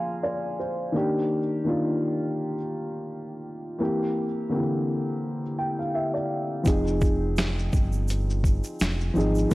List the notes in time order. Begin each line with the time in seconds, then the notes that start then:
Already playing: F3 A#3 D4 G#4 F5 G#5 A#5 C6
0.23 D5
0.60 C5
0.92 D#3 A#3 D4
0.96 G4
1.64 D#3 A#3 D4
1.68 F4
3.79 E3 A#3 C4 G4
4.49 D3 A#3 C4
4.53 E3 G4
5.59 G5
5.79 F5
5.95 E5
6.14 D5
6.63 F1 F3 C4 D#4, kick, shaker
6.67 G#4, closed hi-hat, shaker
6.87 shaker
7.01 kick, shaker
7.05 shaker
7.36 snare, closed hi-hat, shaker
7.39 finger snap, shaker
7.59 shaker
7.73 G1, kick, shaker
7.76 shaker
7.92 shaker
8.08 closed hi-hat, shaker
8.10 shaker
8.30 shaker
8.44 kick, shaker
8.64 shaker
8.80 F1, finger snap, snare, closed hi-hat, shaker
8.82 shaker
9.00 shaker
9.14 G#1 F3 C4 D#4 G#4, shaker
9.20 shaker
9.35 shaker
9.38 shaker
9.49 F3 A#3, shaker